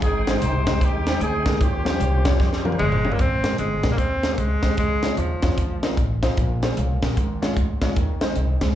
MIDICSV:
0, 0, Header, 1, 7, 480
1, 0, Start_track
1, 0, Key_signature, -4, "major"
1, 0, Tempo, 397351
1, 24, Time_signature, 4, 2, 24, 8
1, 10571, End_track
2, 0, Start_track
2, 0, Title_t, "Tonewheel organ"
2, 0, Program_c, 0, 16
2, 21, Note_on_c, 0, 63, 60
2, 25, Note_on_c, 0, 60, 48
2, 25, Note_on_c, 0, 66, 56
2, 26, Note_on_c, 0, 56, 53
2, 80, Note_on_c, 0, 79, 69
2, 97, Note_off_c, 0, 66, 0
2, 1898, Note_off_c, 0, 63, 0
2, 1900, Note_off_c, 0, 56, 0
2, 1900, Note_off_c, 0, 60, 0
2, 1928, Note_off_c, 0, 79, 0
2, 1932, Note_on_c, 0, 67, 62
2, 1933, Note_on_c, 0, 72, 49
2, 1934, Note_on_c, 0, 61, 57
2, 1937, Note_on_c, 0, 53, 57
2, 3376, Note_on_c, 0, 82, 68
2, 3814, Note_off_c, 0, 67, 0
2, 3814, Note_off_c, 0, 72, 0
2, 3815, Note_off_c, 0, 61, 0
2, 3816, Note_off_c, 0, 53, 0
2, 3822, Note_off_c, 0, 82, 0
2, 10571, End_track
3, 0, Start_track
3, 0, Title_t, "Grand piano"
3, 0, Program_c, 1, 0
3, 38, Note_on_c, 1, 44, 67
3, 335, Note_on_c, 1, 67, 64
3, 336, Note_on_c, 1, 56, 76
3, 337, Note_on_c, 1, 63, 67
3, 338, Note_on_c, 1, 72, 90
3, 389, Note_off_c, 1, 67, 0
3, 390, Note_off_c, 1, 56, 0
3, 390, Note_off_c, 1, 63, 0
3, 391, Note_off_c, 1, 72, 0
3, 420, Note_on_c, 1, 63, 60
3, 423, Note_on_c, 1, 67, 59
3, 424, Note_on_c, 1, 56, 61
3, 426, Note_on_c, 1, 72, 69
3, 557, Note_off_c, 1, 63, 0
3, 558, Note_off_c, 1, 67, 0
3, 559, Note_off_c, 1, 56, 0
3, 559, Note_off_c, 1, 72, 0
3, 763, Note_off_c, 1, 44, 0
3, 814, Note_on_c, 1, 63, 77
3, 815, Note_on_c, 1, 67, 67
3, 816, Note_on_c, 1, 56, 79
3, 819, Note_on_c, 1, 72, 76
3, 927, Note_off_c, 1, 63, 0
3, 928, Note_off_c, 1, 56, 0
3, 928, Note_off_c, 1, 67, 0
3, 930, Note_off_c, 1, 72, 0
3, 1296, Note_on_c, 1, 63, 69
3, 1297, Note_on_c, 1, 56, 73
3, 1297, Note_on_c, 1, 72, 80
3, 1298, Note_on_c, 1, 67, 69
3, 1407, Note_off_c, 1, 63, 0
3, 1408, Note_off_c, 1, 56, 0
3, 1408, Note_off_c, 1, 67, 0
3, 1408, Note_off_c, 1, 72, 0
3, 1765, Note_on_c, 1, 56, 79
3, 1768, Note_on_c, 1, 67, 62
3, 1769, Note_on_c, 1, 63, 70
3, 1770, Note_on_c, 1, 70, 84
3, 1881, Note_off_c, 1, 56, 0
3, 1883, Note_off_c, 1, 63, 0
3, 1883, Note_off_c, 1, 67, 0
3, 1884, Note_off_c, 1, 70, 0
3, 1947, Note_on_c, 1, 51, 66
3, 2236, Note_on_c, 1, 55, 82
3, 2238, Note_on_c, 1, 61, 73
3, 2238, Note_on_c, 1, 65, 66
3, 2239, Note_on_c, 1, 72, 78
3, 2297, Note_off_c, 1, 55, 0
3, 2298, Note_off_c, 1, 61, 0
3, 2298, Note_off_c, 1, 65, 0
3, 2299, Note_off_c, 1, 72, 0
3, 2335, Note_on_c, 1, 55, 63
3, 2335, Note_on_c, 1, 65, 53
3, 2337, Note_on_c, 1, 72, 69
3, 2339, Note_on_c, 1, 61, 61
3, 2471, Note_off_c, 1, 55, 0
3, 2471, Note_off_c, 1, 65, 0
3, 2472, Note_off_c, 1, 72, 0
3, 2473, Note_off_c, 1, 61, 0
3, 2676, Note_off_c, 1, 51, 0
3, 2715, Note_on_c, 1, 55, 84
3, 2719, Note_on_c, 1, 61, 77
3, 2719, Note_on_c, 1, 65, 75
3, 2719, Note_on_c, 1, 73, 98
3, 2835, Note_off_c, 1, 55, 0
3, 2837, Note_off_c, 1, 61, 0
3, 2837, Note_off_c, 1, 65, 0
3, 2837, Note_off_c, 1, 73, 0
3, 3200, Note_on_c, 1, 55, 84
3, 3203, Note_on_c, 1, 61, 77
3, 3203, Note_on_c, 1, 65, 79
3, 3205, Note_on_c, 1, 70, 99
3, 3317, Note_off_c, 1, 55, 0
3, 3319, Note_off_c, 1, 61, 0
3, 3319, Note_off_c, 1, 65, 0
3, 3320, Note_off_c, 1, 70, 0
3, 3678, Note_on_c, 1, 61, 80
3, 3679, Note_on_c, 1, 55, 94
3, 3683, Note_on_c, 1, 65, 71
3, 3687, Note_on_c, 1, 73, 96
3, 3796, Note_off_c, 1, 61, 0
3, 3797, Note_off_c, 1, 55, 0
3, 3799, Note_off_c, 1, 65, 0
3, 3801, Note_off_c, 1, 73, 0
3, 3858, Note_on_c, 1, 44, 52
3, 4160, Note_on_c, 1, 56, 74
3, 4162, Note_on_c, 1, 70, 74
3, 4164, Note_on_c, 1, 60, 59
3, 4165, Note_on_c, 1, 67, 60
3, 4278, Note_off_c, 1, 56, 0
3, 4278, Note_off_c, 1, 70, 0
3, 4279, Note_off_c, 1, 60, 0
3, 4280, Note_off_c, 1, 67, 0
3, 4592, Note_off_c, 1, 44, 0
3, 4633, Note_on_c, 1, 56, 70
3, 4634, Note_on_c, 1, 67, 61
3, 4637, Note_on_c, 1, 60, 65
3, 4637, Note_on_c, 1, 70, 74
3, 4754, Note_off_c, 1, 56, 0
3, 4754, Note_off_c, 1, 67, 0
3, 4756, Note_off_c, 1, 60, 0
3, 4756, Note_off_c, 1, 70, 0
3, 5119, Note_on_c, 1, 60, 61
3, 5121, Note_on_c, 1, 67, 61
3, 5122, Note_on_c, 1, 56, 70
3, 5124, Note_on_c, 1, 72, 80
3, 5237, Note_off_c, 1, 60, 0
3, 5238, Note_off_c, 1, 67, 0
3, 5239, Note_off_c, 1, 56, 0
3, 5240, Note_off_c, 1, 72, 0
3, 5598, Note_on_c, 1, 56, 72
3, 5599, Note_on_c, 1, 60, 61
3, 5602, Note_on_c, 1, 67, 65
3, 5604, Note_on_c, 1, 72, 81
3, 5717, Note_off_c, 1, 56, 0
3, 5718, Note_off_c, 1, 60, 0
3, 5719, Note_off_c, 1, 67, 0
3, 5720, Note_off_c, 1, 72, 0
3, 5778, Note_on_c, 1, 49, 59
3, 6080, Note_on_c, 1, 60, 65
3, 6080, Note_on_c, 1, 63, 71
3, 6082, Note_on_c, 1, 73, 78
3, 6084, Note_on_c, 1, 65, 58
3, 6198, Note_off_c, 1, 60, 0
3, 6198, Note_off_c, 1, 63, 0
3, 6199, Note_off_c, 1, 73, 0
3, 6200, Note_off_c, 1, 65, 0
3, 6513, Note_off_c, 1, 49, 0
3, 6569, Note_on_c, 1, 60, 77
3, 6571, Note_on_c, 1, 65, 69
3, 6571, Note_on_c, 1, 73, 80
3, 6572, Note_on_c, 1, 63, 61
3, 6683, Note_off_c, 1, 60, 0
3, 6684, Note_off_c, 1, 65, 0
3, 6684, Note_off_c, 1, 73, 0
3, 6685, Note_off_c, 1, 63, 0
3, 7041, Note_on_c, 1, 60, 78
3, 7041, Note_on_c, 1, 70, 82
3, 7043, Note_on_c, 1, 65, 71
3, 7044, Note_on_c, 1, 63, 74
3, 7159, Note_off_c, 1, 70, 0
3, 7160, Note_off_c, 1, 60, 0
3, 7161, Note_off_c, 1, 63, 0
3, 7161, Note_off_c, 1, 65, 0
3, 7520, Note_on_c, 1, 60, 84
3, 7522, Note_on_c, 1, 63, 84
3, 7523, Note_on_c, 1, 72, 92
3, 7525, Note_on_c, 1, 65, 86
3, 7640, Note_off_c, 1, 60, 0
3, 7640, Note_off_c, 1, 63, 0
3, 7641, Note_off_c, 1, 72, 0
3, 7642, Note_off_c, 1, 65, 0
3, 7706, Note_on_c, 1, 46, 77
3, 8011, Note_on_c, 1, 68, 74
3, 8012, Note_on_c, 1, 58, 81
3, 8016, Note_on_c, 1, 72, 94
3, 8017, Note_on_c, 1, 61, 83
3, 8125, Note_off_c, 1, 68, 0
3, 8126, Note_off_c, 1, 58, 0
3, 8128, Note_off_c, 1, 61, 0
3, 8128, Note_off_c, 1, 72, 0
3, 8190, Note_on_c, 1, 77, 61
3, 8199, Note_on_c, 1, 73, 51
3, 8438, Note_off_c, 1, 46, 0
3, 8474, Note_off_c, 1, 77, 0
3, 8478, Note_off_c, 1, 73, 0
3, 8495, Note_on_c, 1, 70, 64
3, 8502, Note_on_c, 1, 67, 57
3, 8666, Note_on_c, 1, 44, 72
3, 8946, Note_off_c, 1, 70, 0
3, 8949, Note_off_c, 1, 67, 0
3, 8965, Note_on_c, 1, 73, 93
3, 8966, Note_on_c, 1, 65, 82
3, 8967, Note_on_c, 1, 61, 73
3, 8968, Note_on_c, 1, 56, 86
3, 9083, Note_off_c, 1, 65, 0
3, 9083, Note_off_c, 1, 73, 0
3, 9084, Note_off_c, 1, 56, 0
3, 9084, Note_off_c, 1, 61, 0
3, 9399, Note_off_c, 1, 44, 0
3, 9448, Note_on_c, 1, 56, 93
3, 9450, Note_on_c, 1, 61, 77
3, 9450, Note_on_c, 1, 65, 75
3, 9453, Note_on_c, 1, 73, 88
3, 9564, Note_off_c, 1, 56, 0
3, 9565, Note_off_c, 1, 61, 0
3, 9565, Note_off_c, 1, 65, 0
3, 9567, Note_off_c, 1, 73, 0
3, 9621, Note_on_c, 1, 51, 75
3, 9917, Note_on_c, 1, 60, 78
3, 9917, Note_on_c, 1, 63, 73
3, 9919, Note_on_c, 1, 56, 87
3, 9919, Note_on_c, 1, 72, 100
3, 10039, Note_off_c, 1, 60, 0
3, 10039, Note_off_c, 1, 63, 0
3, 10040, Note_off_c, 1, 56, 0
3, 10040, Note_off_c, 1, 72, 0
3, 10097, Note_on_c, 1, 75, 60
3, 10105, Note_on_c, 1, 72, 54
3, 10356, Note_off_c, 1, 51, 0
3, 10383, Note_off_c, 1, 72, 0
3, 10387, Note_off_c, 1, 75, 0
3, 10401, Note_on_c, 1, 72, 64
3, 10408, Note_on_c, 1, 68, 53
3, 10571, Note_off_c, 1, 68, 0
3, 10571, Note_off_c, 1, 72, 0
3, 10571, End_track
4, 0, Start_track
4, 0, Title_t, "Horn section"
4, 0, Program_c, 2, 61
4, 34, Note_on_c, 2, 68, 98
4, 41, Note_on_c, 2, 60, 69
4, 42, Note_on_c, 2, 63, 73
4, 392, Note_off_c, 2, 68, 0
4, 418, Note_off_c, 2, 63, 0
4, 430, Note_on_c, 2, 67, 86
4, 432, Note_on_c, 2, 63, 85
4, 432, Note_on_c, 2, 72, 114
4, 941, Note_off_c, 2, 60, 0
4, 982, Note_off_c, 2, 67, 0
4, 989, Note_off_c, 2, 72, 0
4, 992, Note_off_c, 2, 63, 0
4, 997, Note_on_c, 2, 67, 102
4, 1004, Note_on_c, 2, 60, 77
4, 1006, Note_on_c, 2, 63, 76
4, 1457, Note_off_c, 2, 60, 0
4, 1462, Note_off_c, 2, 63, 0
4, 1467, Note_off_c, 2, 67, 0
4, 1469, Note_on_c, 2, 68, 89
4, 1471, Note_on_c, 2, 60, 63
4, 1476, Note_on_c, 2, 63, 61
4, 1909, Note_off_c, 2, 68, 0
4, 1911, Note_off_c, 2, 60, 0
4, 1913, Note_off_c, 2, 63, 0
4, 1936, Note_on_c, 2, 67, 87
4, 1944, Note_on_c, 2, 58, 59
4, 1948, Note_on_c, 2, 61, 67
4, 3330, Note_off_c, 2, 58, 0
4, 3332, Note_off_c, 2, 61, 0
4, 3374, Note_off_c, 2, 67, 0
4, 10571, End_track
5, 0, Start_track
5, 0, Title_t, "Alto saxophone"
5, 0, Program_c, 3, 65
5, 3367, Note_on_c, 3, 56, 104
5, 3778, Note_on_c, 3, 58, 101
5, 3796, Note_off_c, 3, 56, 0
5, 3868, Note_on_c, 3, 60, 111
5, 3886, Note_off_c, 3, 58, 0
5, 4325, Note_off_c, 3, 60, 0
5, 4332, Note_on_c, 3, 56, 84
5, 4698, Note_off_c, 3, 56, 0
5, 4732, Note_on_c, 3, 58, 88
5, 4807, Note_on_c, 3, 60, 103
5, 4825, Note_off_c, 3, 58, 0
5, 5228, Note_on_c, 3, 58, 58
5, 5246, Note_off_c, 3, 60, 0
5, 5296, Note_on_c, 3, 56, 93
5, 5314, Note_off_c, 3, 58, 0
5, 5768, Note_off_c, 3, 56, 0
5, 5776, Note_on_c, 3, 56, 98
5, 6264, Note_on_c, 3, 53, 76
5, 6282, Note_off_c, 3, 56, 0
5, 7222, Note_off_c, 3, 53, 0
5, 10571, End_track
6, 0, Start_track
6, 0, Title_t, "Upright bass"
6, 0, Program_c, 4, 32
6, 23, Note_on_c, 4, 32, 99
6, 430, Note_off_c, 4, 32, 0
6, 506, Note_on_c, 4, 36, 116
6, 911, Note_off_c, 4, 36, 0
6, 979, Note_on_c, 4, 39, 105
6, 1386, Note_off_c, 4, 39, 0
6, 1454, Note_on_c, 4, 38, 104
6, 1863, Note_off_c, 4, 38, 0
6, 1940, Note_on_c, 4, 39, 101
6, 2346, Note_off_c, 4, 39, 0
6, 2414, Note_on_c, 4, 36, 108
6, 2822, Note_off_c, 4, 36, 0
6, 2896, Note_on_c, 4, 41, 95
6, 3303, Note_off_c, 4, 41, 0
6, 3377, Note_on_c, 4, 31, 92
6, 3784, Note_off_c, 4, 31, 0
6, 3853, Note_on_c, 4, 32, 90
6, 4262, Note_off_c, 4, 32, 0
6, 4335, Note_on_c, 4, 31, 101
6, 4593, Note_off_c, 4, 31, 0
6, 4638, Note_on_c, 4, 34, 74
6, 4789, Note_off_c, 4, 34, 0
6, 4809, Note_on_c, 4, 39, 79
6, 5220, Note_off_c, 4, 39, 0
6, 5287, Note_on_c, 4, 37, 83
6, 5699, Note_off_c, 4, 37, 0
6, 5772, Note_on_c, 4, 37, 91
6, 6182, Note_off_c, 4, 37, 0
6, 6252, Note_on_c, 4, 39, 92
6, 6512, Note_off_c, 4, 39, 0
6, 6560, Note_on_c, 4, 41, 82
6, 6711, Note_off_c, 4, 41, 0
6, 6733, Note_on_c, 4, 32, 87
6, 7144, Note_off_c, 4, 32, 0
6, 7215, Note_on_c, 4, 33, 87
6, 7625, Note_off_c, 4, 33, 0
6, 7700, Note_on_c, 4, 34, 90
6, 8108, Note_off_c, 4, 34, 0
6, 8181, Note_on_c, 4, 36, 104
6, 8439, Note_off_c, 4, 36, 0
6, 8493, Note_on_c, 4, 34, 90
6, 8639, Note_off_c, 4, 34, 0
6, 8661, Note_on_c, 4, 32, 99
6, 9069, Note_off_c, 4, 32, 0
6, 9142, Note_on_c, 4, 38, 80
6, 9549, Note_off_c, 4, 38, 0
6, 9617, Note_on_c, 4, 39, 94
6, 10027, Note_off_c, 4, 39, 0
6, 10099, Note_on_c, 4, 36, 95
6, 10358, Note_off_c, 4, 36, 0
6, 10410, Note_on_c, 4, 37, 83
6, 10557, Note_off_c, 4, 37, 0
6, 10571, End_track
7, 0, Start_track
7, 0, Title_t, "Drums"
7, 25, Note_on_c, 9, 42, 78
7, 26, Note_on_c, 9, 36, 116
7, 146, Note_off_c, 9, 42, 0
7, 147, Note_off_c, 9, 36, 0
7, 329, Note_on_c, 9, 42, 87
7, 331, Note_on_c, 9, 38, 120
7, 450, Note_off_c, 9, 42, 0
7, 452, Note_off_c, 9, 38, 0
7, 504, Note_on_c, 9, 42, 91
7, 625, Note_off_c, 9, 42, 0
7, 805, Note_on_c, 9, 42, 78
7, 807, Note_on_c, 9, 38, 119
7, 809, Note_on_c, 9, 36, 96
7, 926, Note_off_c, 9, 42, 0
7, 927, Note_off_c, 9, 38, 0
7, 929, Note_off_c, 9, 36, 0
7, 981, Note_on_c, 9, 36, 96
7, 983, Note_on_c, 9, 42, 87
7, 1102, Note_off_c, 9, 36, 0
7, 1104, Note_off_c, 9, 42, 0
7, 1287, Note_on_c, 9, 42, 72
7, 1290, Note_on_c, 9, 38, 98
7, 1408, Note_off_c, 9, 42, 0
7, 1411, Note_off_c, 9, 38, 0
7, 1464, Note_on_c, 9, 42, 81
7, 1585, Note_off_c, 9, 42, 0
7, 1761, Note_on_c, 9, 36, 88
7, 1762, Note_on_c, 9, 38, 103
7, 1765, Note_on_c, 9, 42, 75
7, 1882, Note_off_c, 9, 36, 0
7, 1883, Note_off_c, 9, 38, 0
7, 1886, Note_off_c, 9, 42, 0
7, 1942, Note_on_c, 9, 36, 119
7, 1945, Note_on_c, 9, 42, 90
7, 2063, Note_off_c, 9, 36, 0
7, 2066, Note_off_c, 9, 42, 0
7, 2248, Note_on_c, 9, 42, 83
7, 2250, Note_on_c, 9, 38, 122
7, 2369, Note_off_c, 9, 42, 0
7, 2370, Note_off_c, 9, 38, 0
7, 2424, Note_on_c, 9, 42, 96
7, 2545, Note_off_c, 9, 42, 0
7, 2719, Note_on_c, 9, 42, 84
7, 2721, Note_on_c, 9, 38, 105
7, 2724, Note_on_c, 9, 36, 97
7, 2840, Note_off_c, 9, 42, 0
7, 2842, Note_off_c, 9, 38, 0
7, 2845, Note_off_c, 9, 36, 0
7, 2897, Note_on_c, 9, 36, 97
7, 2901, Note_on_c, 9, 38, 51
7, 3018, Note_off_c, 9, 36, 0
7, 3022, Note_off_c, 9, 38, 0
7, 3053, Note_on_c, 9, 38, 60
7, 3174, Note_off_c, 9, 38, 0
7, 3204, Note_on_c, 9, 48, 69
7, 3289, Note_off_c, 9, 48, 0
7, 3289, Note_on_c, 9, 48, 74
7, 3375, Note_on_c, 9, 47, 85
7, 3410, Note_off_c, 9, 48, 0
7, 3496, Note_off_c, 9, 47, 0
7, 3529, Note_on_c, 9, 45, 79
7, 3650, Note_off_c, 9, 45, 0
7, 3680, Note_on_c, 9, 43, 95
7, 3765, Note_off_c, 9, 43, 0
7, 3765, Note_on_c, 9, 43, 86
7, 3854, Note_on_c, 9, 42, 88
7, 3856, Note_on_c, 9, 36, 105
7, 3886, Note_off_c, 9, 43, 0
7, 3975, Note_off_c, 9, 42, 0
7, 3976, Note_off_c, 9, 36, 0
7, 4154, Note_on_c, 9, 42, 84
7, 4155, Note_on_c, 9, 38, 113
7, 4274, Note_off_c, 9, 42, 0
7, 4276, Note_off_c, 9, 38, 0
7, 4328, Note_on_c, 9, 42, 84
7, 4449, Note_off_c, 9, 42, 0
7, 4631, Note_on_c, 9, 42, 76
7, 4633, Note_on_c, 9, 38, 109
7, 4638, Note_on_c, 9, 36, 90
7, 4752, Note_off_c, 9, 42, 0
7, 4753, Note_off_c, 9, 38, 0
7, 4759, Note_off_c, 9, 36, 0
7, 4809, Note_on_c, 9, 42, 91
7, 4811, Note_on_c, 9, 36, 92
7, 4930, Note_off_c, 9, 42, 0
7, 4931, Note_off_c, 9, 36, 0
7, 5113, Note_on_c, 9, 42, 68
7, 5115, Note_on_c, 9, 38, 95
7, 5234, Note_off_c, 9, 42, 0
7, 5236, Note_off_c, 9, 38, 0
7, 5289, Note_on_c, 9, 42, 75
7, 5290, Note_on_c, 9, 36, 83
7, 5410, Note_off_c, 9, 42, 0
7, 5411, Note_off_c, 9, 36, 0
7, 5589, Note_on_c, 9, 38, 97
7, 5592, Note_on_c, 9, 42, 64
7, 5593, Note_on_c, 9, 36, 80
7, 5710, Note_off_c, 9, 38, 0
7, 5713, Note_off_c, 9, 42, 0
7, 5714, Note_off_c, 9, 36, 0
7, 5766, Note_on_c, 9, 42, 85
7, 5773, Note_on_c, 9, 36, 113
7, 5887, Note_off_c, 9, 42, 0
7, 5894, Note_off_c, 9, 36, 0
7, 6072, Note_on_c, 9, 42, 86
7, 6074, Note_on_c, 9, 38, 120
7, 6193, Note_off_c, 9, 42, 0
7, 6194, Note_off_c, 9, 38, 0
7, 6248, Note_on_c, 9, 42, 87
7, 6369, Note_off_c, 9, 42, 0
7, 6552, Note_on_c, 9, 42, 77
7, 6554, Note_on_c, 9, 38, 107
7, 6561, Note_on_c, 9, 36, 93
7, 6673, Note_off_c, 9, 42, 0
7, 6675, Note_off_c, 9, 38, 0
7, 6682, Note_off_c, 9, 36, 0
7, 6737, Note_on_c, 9, 36, 106
7, 6739, Note_on_c, 9, 42, 85
7, 6858, Note_off_c, 9, 36, 0
7, 6860, Note_off_c, 9, 42, 0
7, 7041, Note_on_c, 9, 42, 66
7, 7043, Note_on_c, 9, 38, 106
7, 7162, Note_off_c, 9, 42, 0
7, 7164, Note_off_c, 9, 38, 0
7, 7216, Note_on_c, 9, 36, 93
7, 7219, Note_on_c, 9, 42, 73
7, 7337, Note_off_c, 9, 36, 0
7, 7340, Note_off_c, 9, 42, 0
7, 7522, Note_on_c, 9, 36, 80
7, 7522, Note_on_c, 9, 38, 97
7, 7525, Note_on_c, 9, 42, 65
7, 7643, Note_off_c, 9, 36, 0
7, 7643, Note_off_c, 9, 38, 0
7, 7646, Note_off_c, 9, 42, 0
7, 7698, Note_on_c, 9, 42, 78
7, 7702, Note_on_c, 9, 36, 103
7, 7819, Note_off_c, 9, 42, 0
7, 7823, Note_off_c, 9, 36, 0
7, 8005, Note_on_c, 9, 42, 77
7, 8007, Note_on_c, 9, 38, 120
7, 8126, Note_off_c, 9, 42, 0
7, 8128, Note_off_c, 9, 38, 0
7, 8179, Note_on_c, 9, 42, 87
7, 8300, Note_off_c, 9, 42, 0
7, 8485, Note_on_c, 9, 42, 73
7, 8487, Note_on_c, 9, 38, 112
7, 8489, Note_on_c, 9, 36, 98
7, 8606, Note_off_c, 9, 42, 0
7, 8608, Note_off_c, 9, 38, 0
7, 8610, Note_off_c, 9, 36, 0
7, 8663, Note_on_c, 9, 36, 105
7, 8666, Note_on_c, 9, 42, 88
7, 8784, Note_off_c, 9, 36, 0
7, 8787, Note_off_c, 9, 42, 0
7, 8970, Note_on_c, 9, 42, 67
7, 8972, Note_on_c, 9, 38, 91
7, 9090, Note_off_c, 9, 42, 0
7, 9093, Note_off_c, 9, 38, 0
7, 9140, Note_on_c, 9, 36, 97
7, 9145, Note_on_c, 9, 42, 81
7, 9260, Note_off_c, 9, 36, 0
7, 9266, Note_off_c, 9, 42, 0
7, 9441, Note_on_c, 9, 38, 102
7, 9442, Note_on_c, 9, 36, 85
7, 9444, Note_on_c, 9, 42, 62
7, 9562, Note_off_c, 9, 38, 0
7, 9563, Note_off_c, 9, 36, 0
7, 9565, Note_off_c, 9, 42, 0
7, 9620, Note_on_c, 9, 42, 82
7, 9622, Note_on_c, 9, 36, 102
7, 9740, Note_off_c, 9, 42, 0
7, 9743, Note_off_c, 9, 36, 0
7, 9920, Note_on_c, 9, 42, 78
7, 9921, Note_on_c, 9, 38, 120
7, 10040, Note_off_c, 9, 42, 0
7, 10042, Note_off_c, 9, 38, 0
7, 10093, Note_on_c, 9, 42, 81
7, 10214, Note_off_c, 9, 42, 0
7, 10403, Note_on_c, 9, 42, 77
7, 10405, Note_on_c, 9, 38, 102
7, 10407, Note_on_c, 9, 36, 88
7, 10524, Note_off_c, 9, 42, 0
7, 10526, Note_off_c, 9, 38, 0
7, 10528, Note_off_c, 9, 36, 0
7, 10571, End_track
0, 0, End_of_file